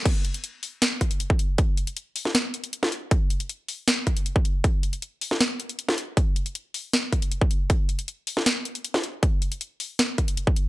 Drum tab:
CC |x---------------|----------------|----------------|----------------|
HH |x-xxx-o-x-xxx-x-|x-xxx-o-x-xxx-x-|x-xxx-o-x-xxx-x-|x-xxx-o-x-xxx-x-|
SD |--------o-------|-------oo----o--|--------o-------|-------oo----o--|
BD |o---------o--o--|o---------------|o---------o--o--|o---------------|

CC |----------------|----------------|----------------|
HH |x-xxx-o-x-xxx-x-|x-xxx-o-x-xxx-x-|x-xxx-o-x-xxx-x-|
SD |--------o-------|-------oo----o--|--------o-------|
BD |o---------o--o--|o---------------|o---------o--o--|